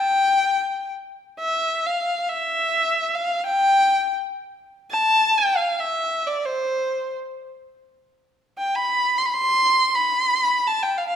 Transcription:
0, 0, Header, 1, 2, 480
1, 0, Start_track
1, 0, Tempo, 500000
1, 10712, End_track
2, 0, Start_track
2, 0, Title_t, "Kamancheh"
2, 0, Program_c, 0, 110
2, 0, Note_on_c, 0, 79, 94
2, 876, Note_off_c, 0, 79, 0
2, 1341, Note_on_c, 0, 76, 79
2, 1789, Note_on_c, 0, 77, 69
2, 1804, Note_off_c, 0, 76, 0
2, 2203, Note_on_c, 0, 76, 80
2, 2217, Note_off_c, 0, 77, 0
2, 3022, Note_on_c, 0, 77, 81
2, 3036, Note_off_c, 0, 76, 0
2, 3313, Note_off_c, 0, 77, 0
2, 3319, Note_on_c, 0, 79, 92
2, 4011, Note_off_c, 0, 79, 0
2, 4713, Note_on_c, 0, 81, 90
2, 5164, Note_on_c, 0, 79, 82
2, 5178, Note_off_c, 0, 81, 0
2, 5349, Note_on_c, 0, 77, 72
2, 5363, Note_off_c, 0, 79, 0
2, 5570, Note_on_c, 0, 76, 75
2, 5585, Note_off_c, 0, 77, 0
2, 6019, Note_on_c, 0, 74, 67
2, 6034, Note_off_c, 0, 76, 0
2, 6196, Note_on_c, 0, 72, 75
2, 6210, Note_off_c, 0, 74, 0
2, 6869, Note_off_c, 0, 72, 0
2, 8239, Note_on_c, 0, 79, 77
2, 8403, Note_on_c, 0, 83, 86
2, 8417, Note_off_c, 0, 79, 0
2, 8811, Note_on_c, 0, 84, 80
2, 8826, Note_off_c, 0, 83, 0
2, 8890, Note_on_c, 0, 83, 68
2, 8904, Note_off_c, 0, 84, 0
2, 8961, Note_on_c, 0, 84, 97
2, 8976, Note_off_c, 0, 83, 0
2, 9549, Note_on_c, 0, 83, 86
2, 9563, Note_off_c, 0, 84, 0
2, 10246, Note_on_c, 0, 81, 82
2, 10261, Note_off_c, 0, 83, 0
2, 10397, Note_on_c, 0, 79, 72
2, 10411, Note_off_c, 0, 81, 0
2, 10536, Note_on_c, 0, 77, 65
2, 10550, Note_off_c, 0, 79, 0
2, 10631, Note_off_c, 0, 77, 0
2, 10637, Note_on_c, 0, 77, 68
2, 10712, Note_off_c, 0, 77, 0
2, 10712, End_track
0, 0, End_of_file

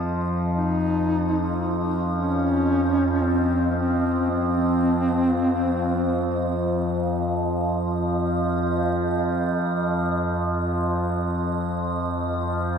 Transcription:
0, 0, Header, 1, 4, 480
1, 0, Start_track
1, 0, Tempo, 500000
1, 12270, End_track
2, 0, Start_track
2, 0, Title_t, "Ambient pad"
2, 0, Program_c, 0, 92
2, 0, Note_on_c, 0, 75, 71
2, 12270, Note_off_c, 0, 75, 0
2, 12270, End_track
3, 0, Start_track
3, 0, Title_t, "Duduk"
3, 0, Program_c, 1, 69
3, 558, Note_on_c, 1, 63, 97
3, 1532, Note_off_c, 1, 63, 0
3, 2080, Note_on_c, 1, 61, 100
3, 3093, Note_on_c, 1, 60, 79
3, 3108, Note_off_c, 1, 61, 0
3, 3605, Note_off_c, 1, 60, 0
3, 3618, Note_on_c, 1, 60, 80
3, 4087, Note_off_c, 1, 60, 0
3, 4132, Note_on_c, 1, 60, 89
3, 6136, Note_off_c, 1, 60, 0
3, 12270, End_track
4, 0, Start_track
4, 0, Title_t, "Synth drone"
4, 0, Program_c, 2, 95
4, 0, Note_on_c, 2, 41, 70
4, 0, Note_on_c, 2, 53, 70
4, 12270, Note_off_c, 2, 41, 0
4, 12270, Note_off_c, 2, 53, 0
4, 12270, End_track
0, 0, End_of_file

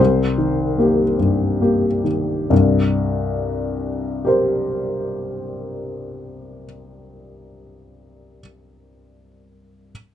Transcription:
0, 0, Header, 1, 2, 480
1, 0, Start_track
1, 0, Key_signature, -3, "minor"
1, 0, Tempo, 818554
1, 950, Tempo, 865801
1, 1437, Time_signature, 3, 2, 24, 8
1, 5677, End_track
2, 0, Start_track
2, 0, Title_t, "Grand piano"
2, 0, Program_c, 0, 0
2, 0, Control_c, 0, 64, 127
2, 0, Note_on_c, 0, 36, 37
2, 0, Note_on_c, 0, 72, 46
2, 4, Control_c, 0, 64, 0
2, 122, Control_c, 0, 64, 127
2, 223, Note_on_c, 0, 51, 29
2, 458, Note_on_c, 0, 58, 27
2, 465, Note_on_c, 0, 67, 28
2, 602, Note_off_c, 0, 51, 0
2, 677, Note_off_c, 0, 58, 0
2, 681, Note_off_c, 0, 67, 0
2, 693, Note_on_c, 0, 43, 27
2, 944, Note_on_c, 0, 58, 29
2, 949, Note_on_c, 0, 67, 30
2, 1090, Note_off_c, 0, 43, 0
2, 1168, Note_off_c, 0, 58, 0
2, 1170, Note_off_c, 0, 67, 0
2, 1182, Note_on_c, 0, 51, 28
2, 1189, Note_off_c, 0, 72, 0
2, 1413, Note_off_c, 0, 36, 0
2, 1432, Note_off_c, 0, 51, 0
2, 1438, Note_on_c, 0, 43, 39
2, 1441, Note_on_c, 0, 36, 40
2, 1453, Control_c, 0, 64, 0
2, 1589, Control_c, 0, 64, 127
2, 2406, Note_on_c, 0, 67, 31
2, 2416, Note_on_c, 0, 70, 32
2, 2425, Note_on_c, 0, 72, 32
2, 3728, Note_off_c, 0, 43, 0
2, 3731, Note_off_c, 0, 36, 0
2, 4696, Note_off_c, 0, 67, 0
2, 4706, Note_off_c, 0, 70, 0
2, 4715, Note_off_c, 0, 72, 0
2, 5548, Control_c, 0, 64, 0
2, 5677, End_track
0, 0, End_of_file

